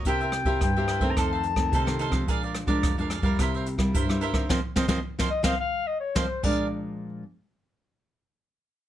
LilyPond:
<<
  \new Staff \with { instrumentName = "Clarinet" } { \time 4/4 \key f \phrygian \tempo 4 = 108 g''4 g''8.~ g''32 bes''32 a''4. r8 | r1 | r4. ees''16 f''16 f''8 ees''16 des''16 c''8 d''8 | r1 | }
  \new Staff \with { instrumentName = "Cavaquinho" } { \time 4/4 \key f \phrygian <e' bes' c'' e''>16 <bes' c'' e''>16 r16 <bes' c'' e''>8 <bes' c'' e''>16 <e' bes' c'' e''>16 <bes' c'' e''>16 <ees' a' c'' f''>16 <a' c'' f''>16 r8 <ees' a' c'' f''>16 <a' c'' f''>16 <ees' a' c'' f''>16 <a' c'' f''>16 | <aes' bes' d'' f''>16 <bes' d'' f''>16 r16 <bes' d'' f''>8 <bes' d'' f''>16 <aes' bes' d'' f''>16 <bes' d'' f''>16 <e' bes' c'' e''>16 <bes' c'' e''>16 r8 <e' bes' c'' e''>16 <bes' c'' e''>16 <e' bes' c'' e''>16 <bes' c'' e''>16 | <c'' ees'' f''>16 r16 <c'' ees'' f''>16 <c'' ees'' f''>16 r16 <c'' ees'' f''>16 r16 <c'' ees'' f''>16 r4 <c'' ees'' f''>16 r16 <aes' bes' d'' f''>8 | r1 | }
  \new Staff \with { instrumentName = "Nylon-string guitar" } { \time 4/4 \key f \phrygian << { <bes e' g'>8. <bes e' g'>8 <bes e' g'>8 <ees a c'>4 <ees a c'>8 <ees a c'>8 <f aes d'>16~ | <f aes d'>8. <f aes d'>8 <f aes d'>8 <g bes e'>4 <g bes e'>8 <g bes e'>8 <ees bes c'>16 | <f bes c'>16 r16 <f bes c'>16 <f bes c'>16 r16 <f bes c'>16 r16 <f bes c'>16 r4 <f bes c'>16 r16 <bes, f aes d'>8 | r1 | } \\ { c4 g,4 f,4 c4 | bes,4 f,4 c4 g,4 | r1 | r1 | } >> }
  \new DrumStaff \with { instrumentName = "Drums" } \drummode { \time 4/4 <hh bd>16 hh16 <hh ss>16 <hh bd>16 <hh bd ss>16 hh16 <hh ss>16 <hh bd>16 <hh bd ss>8 hh16 <hh bd ss>16 <hh bd>16 <hh ss>16 hh16 <bd ss>16 | <hh bd>16 hh16 <hh ss>16 <hh bd>16 <hh bd ss>16 hh16 <hh ss>16 <hh bd>16 <hh bd ss>16 hh16 hh16 <hh bd ss>16 <hh bd>16 <hh ss>16 hh16 <bd ss>16 | <bd sn>8 <bd sn>16 <bd sn>16 r16 <bd sn>8 <bd sn>16 r4 <bd sn>8 <cymc bd>8 | r4 r4 r4 r4 | }
>>